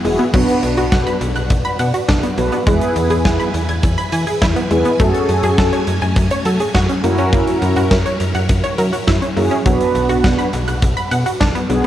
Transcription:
Already playing: E3 B3 F#4 G#4
0.05 E1 G#3 B3 E4 F#4 G#4, open hi-hat
0.19 B3, closed hi-hat
0.34 B1 F#3 B3 D4 F#4 B4, kick, crash
0.48 closed hi-hat
0.63 B1, closed hi-hat
0.77 B1 F#4, closed hi-hat
0.92 B1 F#5, kick, snare
1.07 B5, closed hi-hat
1.21 B1, closed hi-hat
1.36 B1 F#6, closed hi-hat
1.50 B1, kick, closed hi-hat
1.65 B5, closed hi-hat
1.79 B2 F#5, closed hi-hat
1.94 F#4, closed hi-hat
2.09 B1 D4, kick, snare
2.23 B3, closed hi-hat
2.38 B1 F#3 B3 D4 F#4 B4, closed hi-hat
2.52 B3, closed hi-hat
2.67 E2 E3 G#3 B3 E4 G#4 B4 G#5, kick, closed hi-hat
2.81 closed hi-hat
2.96 E2, closed hi-hat
3.10 E2 G#4, closed hi-hat
3.25 E2 G#5, kick, snare
3.40 B5, closed hi-hat
3.54 E2, closed hi-hat
3.69 E2 G#6, closed hi-hat
3.83 E2, kick, closed hi-hat
3.98 B5, closed hi-hat
4.12 E3 G#5, closed hi-hat
4.27 G#4, closed hi-hat
4.42 E2 E4, kick, snare
4.56 B3, closed hi-hat
4.71 E2 G#3 B3 E4 G#4 B4, closed hi-hat
4.85 B3, closed hi-hat
5.00 F#2 F#3 A3 C#4 F#4 G#4 A4, kick, closed hi-hat
5.14 closed hi-hat
5.29 F#2, closed hi-hat
5.43 F#2 G#4, closed hi-hat
5.58 F#2 A4, kick, snare
5.73 C#5, closed hi-hat
5.87 F#2, closed hi-hat
6.02 F#2 G#5, closed hi-hat
6.16 F#2, kick, closed hi-hat
6.31 C#5, closed hi-hat
6.45 F#3 A4, closed hi-hat
6.60 G#4, closed hi-hat
6.75 F#2 F#4, kick, snare
6.89 C#4, closed hi-hat
7.04 F#2 A#3 C#4 E4 F#4 A#4, closed hi-hat
7.18 C#4, closed hi-hat
7.33 A#3, kick, closed hi-hat
7.47 closed hi-hat
7.62 F#2, closed hi-hat
7.76 F#2 F#4, closed hi-hat
7.91 F#2 A#4, kick, snare
8.06 C#5, closed hi-hat
8.20 F#2, closed hi-hat
8.35 F#2 F#5, closed hi-hat
8.49 F#2, kick, closed hi-hat
8.64 C#5, closed hi-hat
8.78 F#3 A#4, closed hi-hat
8.93 F#4, closed hi-hat
9.07 F#2 E4, kick, snare
9.22 C#4, closed hi-hat
9.37 F#2 A#3 C#4 E4 F#4 G#4, open hi-hat
9.51 C#4, closed hi-hat
9.66 B1 F#3 B3 D4 F#4 B4, kick, closed hi-hat
9.81 closed hi-hat
9.95 B1, closed hi-hat
10.09 B1 F#4, closed hi-hat
10.24 B1 F#5, kick, snare
10.39 B5, closed hi-hat
10.53 B1, closed hi-hat
10.68 B1 F#6, closed hi-hat
10.82 B1, kick, closed hi-hat
10.97 B5, closed hi-hat
11.11 B2 F#5, closed hi-hat
11.26 F#4, closed hi-hat
11.40 B1 D4, kick, snare
11.55 B3, closed hi-hat
11.70 B1 F#3 B3 D4 F#4 G#4, closed hi-hat

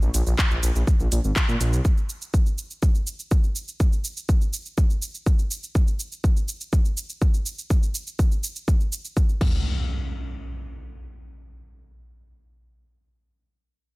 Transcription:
Already playing: A#4 F5 C#6
0.02 A#1, shaker
0.14 A#1, closed hi-hat, shaker
0.27 A#1, shaker
0.39 kick, clap, shaker
0.51 A#1, shaker
0.63 A#1, closed hi-hat, shaker
0.75 A#1, shaker
0.87 kick, shaker
1.00 A#1, shaker
1.12 A#1, closed hi-hat, shaker
1.24 G#1, shaker
1.36 kick, clap, shaker
1.49 A#2, shaker
1.61 A#1, closed hi-hat, shaker
1.73 C2, shaker
1.85 kick, shaker
1.97 shaker
2.09 shaker
2.22 shaker
2.34 kick, shaker
2.46 shaker
2.58 shaker
2.71 shaker
2.83 kick, shaker
2.95 shaker
3.07 shaker
3.19 shaker
3.31 kick, shaker
3.44 shaker
3.56 shaker
3.68 shaker
3.80 kick, shaker
3.93 shaker
4.04 shaker
4.17 shaker
4.29 kick, shaker
4.41 shaker
4.53 shaker
4.66 shaker
4.78 kick, shaker
4.90 shaker
5.02 shaker
5.15 shaker
5.26 kick, shaker
5.39 shaker
5.51 shaker
5.63 shaker
5.75 kick, shaker
5.88 shaker
6.00 shaker
6.12 shaker
6.24 kick, shaker
6.37 shaker
6.48 shaker
6.61 shaker
6.73 kick, shaker
6.85 shaker
6.97 shaker
7.10 shaker
7.22 kick, shaker
7.34 shaker
7.46 shaker
7.58 shaker
7.70 kick, shaker
7.83 shaker
7.95 shaker
8.07 shaker
8.19 kick, shaker
8.32 shaker
8.44 shaker
8.56 shaker
8.68 kick, shaker
8.81 shaker
8.92 shaker
9.05 shaker
9.17 kick, shaker
9.29 shaker
9.41 kick, crash, impact

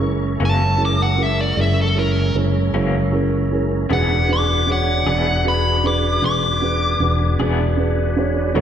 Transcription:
Already playing: F#1 G#3 C#4 E4 A#4
0.00 C#4 E4 G#4 A#4
0.39 F#1 F#2 E3 A#3 C#4 E4 G#4 A#4
0.45 A5
0.77 C#4 E4 G#4 A#4
0.85 D6
1.02 F#5
1.16 C#4 E4 G#4 A#4
1.23 E5
1.41 D5
1.56 F#1 C#4 E4 G#4 A#4
1.61 E5
1.81 A4
1.95 C#4 E4 G#4 A#4
2.34 F#1 C#4 E4 G#4 C#5
2.72 F#1 F#2 E3 A#3 C#4 E4 G#4 C#5
3.12 C#4 E4 G#4 A#4
3.51 C#4 E4 G#4 A#4
3.90 E1 E3 B3 D4 F#4 G#4 B4 F#5
4.29 D4 F#4 G#4 B4
4.33 D6
4.66 D4 F#4 G#4 C#5
4.72 F#5
5.06 E1 E3 B3 D4 F#4 G#4 D5
5.45 D4 F#4 G#4 B4 B5
5.84 D4 F#4 G#4 B4 D6
6.22 E1 D4 F#4 G#4 B4 D6
6.61 D4 F#4 G#4 B4
7.00 E1 D4 F#4 G#4 B4
7.39 E1 E3 B3 D4 F#4 G#4 B4
7.77 D4 F#4 G#4 B4
8.16 D4 F#4 G#4 C#5
8.54 B1 B2 F#3 A3 D#4 F#4 A4 C#5

